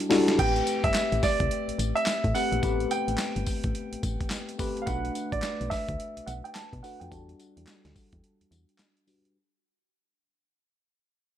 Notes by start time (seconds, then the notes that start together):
Already playing: G3 D4 E4 F#4 A4
0.00 closed hi-hat
0.09 G3 D4 E4 F#4 A4, snare, open hi-hat
0.28 snare, closed hi-hat
0.38 A1 A3 C4 G4 B4 G5, kick, closed hi-hat, crash, tambourine
0.56 closed hi-hat
0.67 closed hi-hat, tambourine
0.84 G1 E5, kick, closed hi-hat
0.94 snare, clap, closed hi-hat, tambourine
1.12 A1, closed hi-hat
1.23 D5, kick, snare, open hi-hat, tambourine
1.40 C2, kick, closed hi-hat
1.51 closed hi-hat
1.68 A1, closed hi-hat
1.79 A1, closed hi-hat, tambourine
1.95 E5, closed hi-hat
2.06 snare, clap, closed hi-hat, tambourine
2.24 A2, kick, closed hi-hat
2.35 A3 C4 G4 B4 F#5, open hi-hat, tambourine
2.52 A#1, closed hi-hat
2.62 A1 A3 B3 G4 B4, kick, closed hi-hat, tambourine
2.69 C4
2.80 closed hi-hat
2.91 G5, closed hi-hat, tambourine
3.08 A1, closed hi-hat
3.18 snare, clap, closed hi-hat, tambourine
3.36 G1, closed hi-hat
3.46 kick, open hi-hat, tambourine
3.64 A1, kick, closed hi-hat
3.75 closed hi-hat
3.92 A1, closed hi-hat
4.03 A1, kick, closed hi-hat, tambourine
4.21 kick, closed hi-hat
4.30 snare, clap, closed hi-hat, tambourine
4.49 closed hi-hat
4.58 A3 C4 G4 B4, kick, open hi-hat, tambourine
4.77 closed hi-hat
4.82 F5
4.86 B1 A3 D4 F#4 B4 F#5, kick, closed hi-hat, tambourine
5.05 closed hi-hat
5.15 closed hi-hat, tambourine
5.32 A1 D5, kick, closed hi-hat
5.42 snare, clap, closed hi-hat, tambourine
5.61 B1, closed hi-hat
5.70 E5, kick, snare, open hi-hat, tambourine
5.88 D2, kick, closed hi-hat
6.00 closed hi-hat
6.17 B1, closed hi-hat
6.26 B1 F#5, closed hi-hat, tambourine
6.44 G5, closed hi-hat
6.54 A5, snare, clap, closed hi-hat, tambourine
6.73 B2, kick, closed hi-hat
6.83 A3 D4 F#4 B4 F#5, open hi-hat, tambourine
7.00 F2 G5, closed hi-hat
7.11 E2 G3 D4 F#4 A4 A5, kick, closed hi-hat, tambourine
7.29 closed hi-hat
7.39 closed hi-hat, tambourine
7.57 E2, closed hi-hat
7.67 snare, clap, closed hi-hat, tambourine
7.85 D2, snare, closed hi-hat
7.96 kick, open hi-hat, tambourine
8.12 E2, kick, closed hi-hat
8.24 closed hi-hat
8.41 E2, closed hi-hat
8.51 E2, closed hi-hat, tambourine
8.69 closed hi-hat
8.78 snare, clap, closed hi-hat, tambourine
8.97 closed hi-hat
9.07 G3 D4 F#4 B4, open hi-hat, tambourine
9.25 closed hi-hat